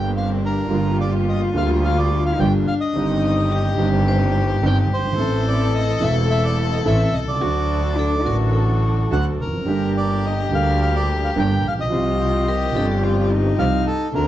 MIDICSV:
0, 0, Header, 1, 7, 480
1, 0, Start_track
1, 0, Key_signature, -2, "minor"
1, 0, Tempo, 559180
1, 615, Time_signature, 4, 2, 24, 8
1, 5883, Tempo, 563910
1, 10203, Tempo, 552995
1, 12241, End_track
2, 0, Start_track
2, 0, Title_t, "Bandoneon"
2, 0, Program_c, 0, 23
2, 0, Note_on_c, 0, 79, 86
2, 94, Note_off_c, 0, 79, 0
2, 149, Note_on_c, 0, 77, 70
2, 254, Note_off_c, 0, 77, 0
2, 390, Note_on_c, 0, 70, 76
2, 833, Note_off_c, 0, 70, 0
2, 864, Note_on_c, 0, 74, 79
2, 971, Note_off_c, 0, 74, 0
2, 1106, Note_on_c, 0, 75, 82
2, 1213, Note_off_c, 0, 75, 0
2, 1346, Note_on_c, 0, 77, 83
2, 1452, Note_off_c, 0, 77, 0
2, 1586, Note_on_c, 0, 77, 86
2, 1700, Note_on_c, 0, 74, 79
2, 1705, Note_off_c, 0, 77, 0
2, 1923, Note_off_c, 0, 74, 0
2, 1940, Note_on_c, 0, 77, 78
2, 2052, Note_off_c, 0, 77, 0
2, 2055, Note_on_c, 0, 79, 96
2, 2165, Note_off_c, 0, 79, 0
2, 2298, Note_on_c, 0, 77, 89
2, 2353, Note_off_c, 0, 77, 0
2, 2409, Note_on_c, 0, 75, 88
2, 3335, Note_off_c, 0, 75, 0
2, 3999, Note_on_c, 0, 79, 106
2, 4100, Note_off_c, 0, 79, 0
2, 4238, Note_on_c, 0, 72, 104
2, 4707, Note_on_c, 0, 74, 86
2, 4714, Note_off_c, 0, 72, 0
2, 4920, Note_off_c, 0, 74, 0
2, 4936, Note_on_c, 0, 75, 94
2, 5177, Note_off_c, 0, 75, 0
2, 5177, Note_on_c, 0, 76, 99
2, 5282, Note_off_c, 0, 76, 0
2, 5414, Note_on_c, 0, 76, 96
2, 5532, Note_off_c, 0, 76, 0
2, 5533, Note_on_c, 0, 74, 73
2, 5638, Note_off_c, 0, 74, 0
2, 5774, Note_on_c, 0, 75, 81
2, 5825, Note_off_c, 0, 75, 0
2, 5895, Note_on_c, 0, 76, 98
2, 6121, Note_on_c, 0, 75, 90
2, 6134, Note_off_c, 0, 76, 0
2, 6175, Note_off_c, 0, 75, 0
2, 6249, Note_on_c, 0, 74, 83
2, 7169, Note_off_c, 0, 74, 0
2, 7817, Note_on_c, 0, 78, 78
2, 7922, Note_off_c, 0, 78, 0
2, 8060, Note_on_c, 0, 70, 78
2, 8499, Note_off_c, 0, 70, 0
2, 8538, Note_on_c, 0, 74, 73
2, 8779, Note_off_c, 0, 74, 0
2, 8782, Note_on_c, 0, 75, 78
2, 8998, Note_off_c, 0, 75, 0
2, 9028, Note_on_c, 0, 77, 99
2, 9241, Note_off_c, 0, 77, 0
2, 9262, Note_on_c, 0, 77, 96
2, 9366, Note_off_c, 0, 77, 0
2, 9379, Note_on_c, 0, 74, 77
2, 9484, Note_off_c, 0, 74, 0
2, 9620, Note_on_c, 0, 77, 83
2, 9671, Note_off_c, 0, 77, 0
2, 9743, Note_on_c, 0, 79, 92
2, 9981, Note_off_c, 0, 79, 0
2, 9990, Note_on_c, 0, 77, 96
2, 10038, Note_off_c, 0, 77, 0
2, 10098, Note_on_c, 0, 75, 94
2, 11015, Note_off_c, 0, 75, 0
2, 11646, Note_on_c, 0, 77, 98
2, 11868, Note_off_c, 0, 77, 0
2, 11887, Note_on_c, 0, 69, 86
2, 12109, Note_off_c, 0, 69, 0
2, 12131, Note_on_c, 0, 70, 86
2, 12241, Note_off_c, 0, 70, 0
2, 12241, End_track
3, 0, Start_track
3, 0, Title_t, "Vibraphone"
3, 0, Program_c, 1, 11
3, 0, Note_on_c, 1, 70, 67
3, 577, Note_off_c, 1, 70, 0
3, 3024, Note_on_c, 1, 67, 80
3, 3506, Note_on_c, 1, 72, 94
3, 3512, Note_off_c, 1, 67, 0
3, 3833, Note_off_c, 1, 72, 0
3, 6852, Note_on_c, 1, 69, 96
3, 7069, Note_off_c, 1, 69, 0
3, 7084, Note_on_c, 1, 70, 84
3, 7311, Note_on_c, 1, 69, 77
3, 7329, Note_off_c, 1, 70, 0
3, 7651, Note_off_c, 1, 69, 0
3, 10684, Note_on_c, 1, 70, 100
3, 10906, Note_off_c, 1, 70, 0
3, 10930, Note_on_c, 1, 69, 87
3, 11039, Note_off_c, 1, 69, 0
3, 11059, Note_on_c, 1, 67, 77
3, 11500, Note_off_c, 1, 67, 0
3, 12241, End_track
4, 0, Start_track
4, 0, Title_t, "Cello"
4, 0, Program_c, 2, 42
4, 70, Note_on_c, 2, 59, 47
4, 111, Note_on_c, 2, 60, 71
4, 124, Note_off_c, 2, 59, 0
4, 373, Note_on_c, 2, 62, 63
4, 385, Note_off_c, 2, 60, 0
4, 603, Note_off_c, 2, 62, 0
4, 608, Note_on_c, 2, 65, 91
4, 2059, Note_on_c, 2, 62, 85
4, 2072, Note_off_c, 2, 65, 0
4, 2544, Note_on_c, 2, 63, 85
4, 2557, Note_off_c, 2, 62, 0
4, 3019, Note_on_c, 2, 67, 106
4, 3032, Note_off_c, 2, 63, 0
4, 4439, Note_off_c, 2, 67, 0
4, 4445, Note_on_c, 2, 69, 105
4, 6361, Note_on_c, 2, 66, 84
4, 6373, Note_off_c, 2, 69, 0
4, 6835, Note_on_c, 2, 62, 89
4, 6848, Note_off_c, 2, 66, 0
4, 7078, Note_on_c, 2, 66, 75
4, 7090, Note_off_c, 2, 62, 0
4, 8043, Note_off_c, 2, 66, 0
4, 8284, Note_on_c, 2, 67, 104
4, 10169, Note_off_c, 2, 67, 0
4, 10197, Note_on_c, 2, 65, 85
4, 10682, Note_on_c, 2, 67, 99
4, 10695, Note_off_c, 2, 65, 0
4, 11164, Note_on_c, 2, 65, 93
4, 11177, Note_off_c, 2, 67, 0
4, 11412, Note_on_c, 2, 63, 106
4, 11425, Note_off_c, 2, 65, 0
4, 12118, Note_off_c, 2, 63, 0
4, 12123, Note_on_c, 2, 62, 97
4, 12241, Note_off_c, 2, 62, 0
4, 12241, End_track
5, 0, Start_track
5, 0, Title_t, "String section"
5, 0, Program_c, 3, 48
5, 0, Note_on_c, 3, 58, 68
5, 0, Note_on_c, 3, 62, 66
5, 0, Note_on_c, 3, 67, 72
5, 577, Note_off_c, 3, 58, 0
5, 579, Note_off_c, 3, 62, 0
5, 579, Note_off_c, 3, 67, 0
5, 613, Note_on_c, 3, 58, 74
5, 614, Note_on_c, 3, 65, 66
5, 616, Note_on_c, 3, 67, 74
5, 1303, Note_off_c, 3, 58, 0
5, 1303, Note_off_c, 3, 65, 0
5, 1304, Note_off_c, 3, 67, 0
5, 1335, Note_on_c, 3, 58, 72
5, 1339, Note_on_c, 3, 65, 69
5, 1342, Note_on_c, 3, 67, 79
5, 2021, Note_off_c, 3, 58, 0
5, 2023, Note_off_c, 3, 65, 0
5, 2025, Note_off_c, 3, 67, 0
5, 2064, Note_on_c, 3, 58, 81
5, 2067, Note_on_c, 3, 65, 68
5, 2068, Note_on_c, 3, 67, 80
5, 2265, Note_off_c, 3, 58, 0
5, 2267, Note_off_c, 3, 65, 0
5, 2267, Note_off_c, 3, 67, 0
5, 2537, Note_on_c, 3, 60, 74
5, 2539, Note_on_c, 3, 63, 69
5, 2542, Note_on_c, 3, 67, 92
5, 3219, Note_off_c, 3, 60, 0
5, 3220, Note_off_c, 3, 63, 0
5, 3221, Note_off_c, 3, 67, 0
5, 3253, Note_on_c, 3, 60, 79
5, 3257, Note_on_c, 3, 63, 71
5, 3257, Note_on_c, 3, 67, 75
5, 3934, Note_off_c, 3, 60, 0
5, 3936, Note_off_c, 3, 63, 0
5, 3936, Note_off_c, 3, 67, 0
5, 3970, Note_on_c, 3, 63, 74
5, 3972, Note_on_c, 3, 60, 75
5, 3975, Note_on_c, 3, 67, 80
5, 4171, Note_off_c, 3, 63, 0
5, 4172, Note_off_c, 3, 60, 0
5, 4173, Note_off_c, 3, 67, 0
5, 4445, Note_on_c, 3, 60, 82
5, 4449, Note_on_c, 3, 64, 75
5, 4450, Note_on_c, 3, 69, 88
5, 5127, Note_off_c, 3, 60, 0
5, 5130, Note_off_c, 3, 64, 0
5, 5130, Note_off_c, 3, 69, 0
5, 5172, Note_on_c, 3, 60, 75
5, 5174, Note_on_c, 3, 64, 73
5, 5175, Note_on_c, 3, 69, 89
5, 5851, Note_off_c, 3, 60, 0
5, 5851, Note_off_c, 3, 64, 0
5, 5852, Note_off_c, 3, 69, 0
5, 5889, Note_on_c, 3, 60, 80
5, 5892, Note_on_c, 3, 64, 74
5, 5892, Note_on_c, 3, 69, 88
5, 6086, Note_off_c, 3, 60, 0
5, 6088, Note_off_c, 3, 64, 0
5, 6088, Note_off_c, 3, 69, 0
5, 6363, Note_on_c, 3, 62, 71
5, 6364, Note_on_c, 3, 69, 94
5, 6366, Note_on_c, 3, 66, 69
5, 7044, Note_off_c, 3, 62, 0
5, 7045, Note_off_c, 3, 69, 0
5, 7046, Note_off_c, 3, 66, 0
5, 7081, Note_on_c, 3, 62, 74
5, 7086, Note_on_c, 3, 66, 67
5, 7088, Note_on_c, 3, 69, 88
5, 7767, Note_off_c, 3, 62, 0
5, 7770, Note_off_c, 3, 66, 0
5, 7770, Note_off_c, 3, 69, 0
5, 7804, Note_on_c, 3, 62, 65
5, 7808, Note_on_c, 3, 66, 59
5, 7812, Note_on_c, 3, 69, 73
5, 8006, Note_off_c, 3, 62, 0
5, 8008, Note_off_c, 3, 66, 0
5, 8010, Note_off_c, 3, 69, 0
5, 8290, Note_on_c, 3, 67, 60
5, 8291, Note_on_c, 3, 62, 67
5, 8291, Note_on_c, 3, 70, 84
5, 8974, Note_off_c, 3, 62, 0
5, 8974, Note_off_c, 3, 67, 0
5, 8974, Note_off_c, 3, 70, 0
5, 9005, Note_on_c, 3, 67, 67
5, 9006, Note_on_c, 3, 62, 73
5, 9012, Note_on_c, 3, 70, 86
5, 9689, Note_off_c, 3, 62, 0
5, 9689, Note_off_c, 3, 67, 0
5, 9692, Note_off_c, 3, 70, 0
5, 9729, Note_on_c, 3, 62, 73
5, 9729, Note_on_c, 3, 70, 85
5, 9730, Note_on_c, 3, 67, 70
5, 9928, Note_off_c, 3, 62, 0
5, 9929, Note_off_c, 3, 67, 0
5, 9929, Note_off_c, 3, 70, 0
5, 10207, Note_on_c, 3, 67, 83
5, 10208, Note_on_c, 3, 60, 70
5, 10209, Note_on_c, 3, 65, 69
5, 10888, Note_off_c, 3, 67, 0
5, 10889, Note_off_c, 3, 60, 0
5, 10889, Note_off_c, 3, 65, 0
5, 10923, Note_on_c, 3, 60, 74
5, 10925, Note_on_c, 3, 65, 64
5, 10928, Note_on_c, 3, 67, 86
5, 11609, Note_off_c, 3, 60, 0
5, 11610, Note_off_c, 3, 65, 0
5, 11612, Note_off_c, 3, 67, 0
5, 11645, Note_on_c, 3, 65, 66
5, 11646, Note_on_c, 3, 60, 83
5, 11652, Note_on_c, 3, 67, 83
5, 11846, Note_off_c, 3, 60, 0
5, 11846, Note_off_c, 3, 65, 0
5, 11849, Note_off_c, 3, 67, 0
5, 12125, Note_on_c, 3, 60, 80
5, 12129, Note_on_c, 3, 62, 72
5, 12133, Note_on_c, 3, 66, 88
5, 12241, Note_off_c, 3, 60, 0
5, 12241, Note_off_c, 3, 62, 0
5, 12241, Note_off_c, 3, 66, 0
5, 12241, End_track
6, 0, Start_track
6, 0, Title_t, "Grand piano"
6, 0, Program_c, 4, 0
6, 0, Note_on_c, 4, 31, 72
6, 0, Note_on_c, 4, 43, 69
6, 0, Note_on_c, 4, 50, 68
6, 0, Note_on_c, 4, 55, 55
6, 0, Note_on_c, 4, 58, 58
6, 0, Note_on_c, 4, 67, 75
6, 564, Note_off_c, 4, 50, 0
6, 568, Note_off_c, 4, 55, 0
6, 571, Note_off_c, 4, 31, 0
6, 571, Note_off_c, 4, 43, 0
6, 575, Note_off_c, 4, 58, 0
6, 578, Note_off_c, 4, 67, 0
6, 591, Note_on_c, 4, 50, 63
6, 597, Note_on_c, 4, 55, 64
6, 608, Note_on_c, 4, 43, 76
6, 609, Note_on_c, 4, 31, 73
6, 612, Note_on_c, 4, 58, 61
6, 621, Note_on_c, 4, 65, 65
6, 1292, Note_off_c, 4, 50, 0
6, 1295, Note_off_c, 4, 55, 0
6, 1300, Note_off_c, 4, 43, 0
6, 1301, Note_off_c, 4, 31, 0
6, 1302, Note_off_c, 4, 58, 0
6, 1307, Note_off_c, 4, 65, 0
6, 1317, Note_on_c, 4, 50, 88
6, 1329, Note_on_c, 4, 55, 66
6, 1336, Note_on_c, 4, 38, 78
6, 1341, Note_on_c, 4, 58, 64
6, 1354, Note_on_c, 4, 65, 72
6, 2018, Note_off_c, 4, 55, 0
6, 2021, Note_off_c, 4, 50, 0
6, 2022, Note_off_c, 4, 38, 0
6, 2024, Note_off_c, 4, 58, 0
6, 2030, Note_off_c, 4, 65, 0
6, 2052, Note_on_c, 4, 50, 67
6, 2053, Note_on_c, 4, 55, 65
6, 2056, Note_on_c, 4, 31, 86
6, 2056, Note_on_c, 4, 43, 82
6, 2056, Note_on_c, 4, 65, 80
6, 2057, Note_on_c, 4, 58, 65
6, 2259, Note_off_c, 4, 50, 0
6, 2260, Note_off_c, 4, 55, 0
6, 2261, Note_off_c, 4, 31, 0
6, 2261, Note_off_c, 4, 43, 0
6, 2261, Note_off_c, 4, 58, 0
6, 2261, Note_off_c, 4, 65, 0
6, 2517, Note_on_c, 4, 51, 66
6, 2533, Note_on_c, 4, 55, 58
6, 2537, Note_on_c, 4, 43, 80
6, 2539, Note_on_c, 4, 31, 83
6, 2544, Note_on_c, 4, 60, 68
6, 2557, Note_on_c, 4, 67, 76
6, 3209, Note_off_c, 4, 51, 0
6, 3217, Note_off_c, 4, 55, 0
6, 3218, Note_off_c, 4, 43, 0
6, 3220, Note_off_c, 4, 31, 0
6, 3222, Note_off_c, 4, 60, 0
6, 3229, Note_off_c, 4, 67, 0
6, 3229, Note_on_c, 4, 51, 65
6, 3242, Note_on_c, 4, 55, 65
6, 3248, Note_on_c, 4, 43, 86
6, 3250, Note_on_c, 4, 31, 92
6, 3250, Note_on_c, 4, 60, 68
6, 3262, Note_on_c, 4, 67, 79
6, 3922, Note_off_c, 4, 51, 0
6, 3928, Note_off_c, 4, 55, 0
6, 3931, Note_off_c, 4, 43, 0
6, 3933, Note_off_c, 4, 31, 0
6, 3933, Note_off_c, 4, 60, 0
6, 3938, Note_off_c, 4, 67, 0
6, 3968, Note_on_c, 4, 51, 78
6, 3969, Note_on_c, 4, 60, 70
6, 3970, Note_on_c, 4, 43, 86
6, 3971, Note_on_c, 4, 55, 66
6, 3973, Note_on_c, 4, 67, 85
6, 3974, Note_on_c, 4, 31, 88
6, 4170, Note_off_c, 4, 51, 0
6, 4170, Note_off_c, 4, 60, 0
6, 4171, Note_off_c, 4, 43, 0
6, 4171, Note_off_c, 4, 55, 0
6, 4172, Note_off_c, 4, 31, 0
6, 4172, Note_off_c, 4, 67, 0
6, 4272, Note_on_c, 4, 30, 50
6, 4330, Note_off_c, 4, 30, 0
6, 4332, Note_on_c, 4, 31, 66
6, 4390, Note_off_c, 4, 31, 0
6, 4394, Note_on_c, 4, 32, 73
6, 4433, Note_on_c, 4, 52, 74
6, 4444, Note_on_c, 4, 57, 64
6, 4449, Note_on_c, 4, 45, 86
6, 4450, Note_on_c, 4, 33, 78
6, 4451, Note_off_c, 4, 32, 0
6, 4452, Note_on_c, 4, 60, 67
6, 4465, Note_on_c, 4, 69, 78
6, 5121, Note_off_c, 4, 52, 0
6, 5127, Note_off_c, 4, 57, 0
6, 5129, Note_off_c, 4, 45, 0
6, 5130, Note_off_c, 4, 33, 0
6, 5131, Note_off_c, 4, 60, 0
6, 5138, Note_off_c, 4, 69, 0
6, 5150, Note_on_c, 4, 52, 80
6, 5163, Note_on_c, 4, 57, 70
6, 5166, Note_on_c, 4, 40, 85
6, 5168, Note_on_c, 4, 28, 92
6, 5172, Note_on_c, 4, 60, 72
6, 5182, Note_on_c, 4, 69, 79
6, 5840, Note_off_c, 4, 52, 0
6, 5846, Note_off_c, 4, 57, 0
6, 5848, Note_off_c, 4, 40, 0
6, 5849, Note_off_c, 4, 28, 0
6, 5851, Note_off_c, 4, 60, 0
6, 5856, Note_off_c, 4, 69, 0
6, 5883, Note_on_c, 4, 33, 86
6, 5883, Note_on_c, 4, 52, 78
6, 5884, Note_on_c, 4, 57, 69
6, 5886, Note_on_c, 4, 45, 100
6, 5886, Note_on_c, 4, 60, 73
6, 5887, Note_on_c, 4, 69, 84
6, 6083, Note_off_c, 4, 33, 0
6, 6083, Note_off_c, 4, 52, 0
6, 6084, Note_off_c, 4, 57, 0
6, 6085, Note_off_c, 4, 45, 0
6, 6085, Note_off_c, 4, 60, 0
6, 6085, Note_off_c, 4, 69, 0
6, 6192, Note_on_c, 4, 35, 47
6, 6241, Note_on_c, 4, 36, 56
6, 6247, Note_off_c, 4, 35, 0
6, 6301, Note_off_c, 4, 36, 0
6, 6302, Note_on_c, 4, 37, 70
6, 6344, Note_on_c, 4, 50, 69
6, 6357, Note_off_c, 4, 50, 0
6, 6359, Note_on_c, 4, 54, 68
6, 6361, Note_off_c, 4, 37, 0
6, 6366, Note_on_c, 4, 38, 82
6, 6366, Note_on_c, 4, 50, 89
6, 6366, Note_on_c, 4, 57, 67
6, 6380, Note_on_c, 4, 66, 79
6, 7042, Note_off_c, 4, 54, 0
6, 7045, Note_off_c, 4, 50, 0
6, 7046, Note_off_c, 4, 38, 0
6, 7046, Note_off_c, 4, 57, 0
6, 7053, Note_off_c, 4, 66, 0
6, 7063, Note_on_c, 4, 50, 72
6, 7072, Note_on_c, 4, 54, 64
6, 7077, Note_on_c, 4, 33, 74
6, 7080, Note_on_c, 4, 45, 79
6, 7083, Note_on_c, 4, 57, 63
6, 7094, Note_on_c, 4, 66, 78
6, 7758, Note_off_c, 4, 50, 0
6, 7762, Note_off_c, 4, 54, 0
6, 7765, Note_off_c, 4, 33, 0
6, 7766, Note_off_c, 4, 45, 0
6, 7768, Note_off_c, 4, 57, 0
6, 7773, Note_off_c, 4, 66, 0
6, 7801, Note_on_c, 4, 38, 86
6, 7801, Note_on_c, 4, 50, 77
6, 7804, Note_on_c, 4, 54, 60
6, 7805, Note_on_c, 4, 57, 67
6, 7809, Note_on_c, 4, 66, 74
6, 8005, Note_off_c, 4, 38, 0
6, 8006, Note_off_c, 4, 50, 0
6, 8006, Note_off_c, 4, 54, 0
6, 8006, Note_off_c, 4, 57, 0
6, 8008, Note_off_c, 4, 66, 0
6, 8108, Note_on_c, 4, 40, 44
6, 8161, Note_on_c, 4, 41, 54
6, 8166, Note_off_c, 4, 40, 0
6, 8215, Note_on_c, 4, 42, 59
6, 8222, Note_off_c, 4, 41, 0
6, 8263, Note_on_c, 4, 50, 65
6, 8273, Note_on_c, 4, 55, 60
6, 8278, Note_on_c, 4, 31, 74
6, 8279, Note_on_c, 4, 43, 82
6, 8280, Note_off_c, 4, 42, 0
6, 8285, Note_on_c, 4, 58, 54
6, 8294, Note_on_c, 4, 67, 76
6, 8960, Note_off_c, 4, 50, 0
6, 8965, Note_off_c, 4, 55, 0
6, 8968, Note_off_c, 4, 31, 0
6, 8968, Note_off_c, 4, 43, 0
6, 8971, Note_off_c, 4, 58, 0
6, 8976, Note_off_c, 4, 67, 0
6, 8990, Note_on_c, 4, 50, 74
6, 9003, Note_off_c, 4, 50, 0
6, 9005, Note_on_c, 4, 55, 61
6, 9009, Note_on_c, 4, 38, 73
6, 9011, Note_on_c, 4, 50, 81
6, 9017, Note_on_c, 4, 58, 60
6, 9024, Note_on_c, 4, 67, 78
6, 9689, Note_off_c, 4, 55, 0
6, 9691, Note_off_c, 4, 38, 0
6, 9692, Note_off_c, 4, 50, 0
6, 9695, Note_off_c, 4, 58, 0
6, 9698, Note_off_c, 4, 67, 0
6, 9716, Note_on_c, 4, 31, 87
6, 9716, Note_on_c, 4, 50, 74
6, 9717, Note_on_c, 4, 58, 70
6, 9718, Note_on_c, 4, 43, 84
6, 9719, Note_on_c, 4, 55, 69
6, 9720, Note_on_c, 4, 67, 77
6, 9922, Note_off_c, 4, 31, 0
6, 9922, Note_off_c, 4, 50, 0
6, 9923, Note_off_c, 4, 43, 0
6, 9923, Note_off_c, 4, 58, 0
6, 9924, Note_off_c, 4, 55, 0
6, 9924, Note_off_c, 4, 67, 0
6, 10018, Note_on_c, 4, 33, 46
6, 10081, Note_off_c, 4, 33, 0
6, 10081, Note_on_c, 4, 34, 59
6, 10139, Note_on_c, 4, 35, 66
6, 10142, Note_off_c, 4, 34, 0
6, 10175, Note_on_c, 4, 53, 70
6, 10185, Note_on_c, 4, 55, 64
6, 10191, Note_on_c, 4, 36, 83
6, 10193, Note_on_c, 4, 48, 75
6, 10197, Note_on_c, 4, 60, 67
6, 10201, Note_off_c, 4, 35, 0
6, 10209, Note_on_c, 4, 67, 82
6, 10872, Note_off_c, 4, 53, 0
6, 10877, Note_off_c, 4, 55, 0
6, 10880, Note_off_c, 4, 36, 0
6, 10881, Note_off_c, 4, 48, 0
6, 10883, Note_off_c, 4, 60, 0
6, 10890, Note_off_c, 4, 67, 0
6, 10895, Note_on_c, 4, 53, 70
6, 10909, Note_on_c, 4, 55, 65
6, 10914, Note_on_c, 4, 31, 89
6, 10914, Note_on_c, 4, 43, 81
6, 10917, Note_on_c, 4, 60, 65
6, 10931, Note_on_c, 4, 67, 82
6, 11595, Note_off_c, 4, 53, 0
6, 11602, Note_off_c, 4, 55, 0
6, 11604, Note_off_c, 4, 31, 0
6, 11604, Note_off_c, 4, 43, 0
6, 11606, Note_off_c, 4, 60, 0
6, 11613, Note_off_c, 4, 67, 0
6, 11640, Note_on_c, 4, 48, 86
6, 11640, Note_on_c, 4, 53, 73
6, 11641, Note_on_c, 4, 55, 70
6, 11642, Note_on_c, 4, 36, 89
6, 11643, Note_on_c, 4, 60, 67
6, 11645, Note_on_c, 4, 67, 85
6, 11843, Note_off_c, 4, 48, 0
6, 11844, Note_off_c, 4, 36, 0
6, 11844, Note_off_c, 4, 53, 0
6, 11844, Note_off_c, 4, 55, 0
6, 11845, Note_off_c, 4, 60, 0
6, 11846, Note_off_c, 4, 67, 0
6, 12110, Note_on_c, 4, 50, 74
6, 12120, Note_on_c, 4, 57, 70
6, 12123, Note_off_c, 4, 50, 0
6, 12129, Note_on_c, 4, 38, 89
6, 12129, Note_on_c, 4, 50, 81
6, 12132, Note_on_c, 4, 60, 64
6, 12143, Note_on_c, 4, 66, 81
6, 12241, Note_off_c, 4, 38, 0
6, 12241, Note_off_c, 4, 50, 0
6, 12241, Note_off_c, 4, 57, 0
6, 12241, Note_off_c, 4, 60, 0
6, 12241, Note_off_c, 4, 66, 0
6, 12241, End_track
7, 0, Start_track
7, 0, Title_t, "Double bass"
7, 0, Program_c, 5, 43
7, 0, Note_on_c, 5, 31, 81
7, 576, Note_off_c, 5, 31, 0
7, 603, Note_on_c, 5, 31, 69
7, 1298, Note_off_c, 5, 31, 0
7, 1341, Note_on_c, 5, 38, 95
7, 2024, Note_off_c, 5, 38, 0
7, 2064, Note_on_c, 5, 31, 92
7, 2265, Note_off_c, 5, 31, 0
7, 2541, Note_on_c, 5, 31, 81
7, 3221, Note_off_c, 5, 31, 0
7, 3251, Note_on_c, 5, 31, 108
7, 3933, Note_off_c, 5, 31, 0
7, 3968, Note_on_c, 5, 31, 97
7, 4169, Note_off_c, 5, 31, 0
7, 4207, Note_on_c, 5, 31, 60
7, 4440, Note_off_c, 5, 31, 0
7, 4445, Note_on_c, 5, 33, 86
7, 5127, Note_off_c, 5, 33, 0
7, 5164, Note_on_c, 5, 28, 100
7, 5847, Note_off_c, 5, 28, 0
7, 5886, Note_on_c, 5, 33, 107
7, 6085, Note_off_c, 5, 33, 0
7, 6129, Note_on_c, 5, 36, 67
7, 6364, Note_off_c, 5, 36, 0
7, 6370, Note_on_c, 5, 38, 86
7, 7047, Note_off_c, 5, 38, 0
7, 7087, Note_on_c, 5, 33, 96
7, 7770, Note_off_c, 5, 33, 0
7, 7810, Note_on_c, 5, 38, 86
7, 8009, Note_off_c, 5, 38, 0
7, 8048, Note_on_c, 5, 29, 54
7, 8283, Note_off_c, 5, 29, 0
7, 8288, Note_on_c, 5, 31, 73
7, 8972, Note_off_c, 5, 31, 0
7, 9008, Note_on_c, 5, 38, 93
7, 9690, Note_off_c, 5, 38, 0
7, 9726, Note_on_c, 5, 31, 92
7, 9927, Note_off_c, 5, 31, 0
7, 9964, Note_on_c, 5, 34, 62
7, 10195, Note_off_c, 5, 34, 0
7, 10200, Note_on_c, 5, 36, 84
7, 10885, Note_off_c, 5, 36, 0
7, 10920, Note_on_c, 5, 31, 98
7, 11608, Note_off_c, 5, 31, 0
7, 11644, Note_on_c, 5, 36, 87
7, 11846, Note_off_c, 5, 36, 0
7, 12126, Note_on_c, 5, 38, 92
7, 12241, Note_off_c, 5, 38, 0
7, 12241, End_track
0, 0, End_of_file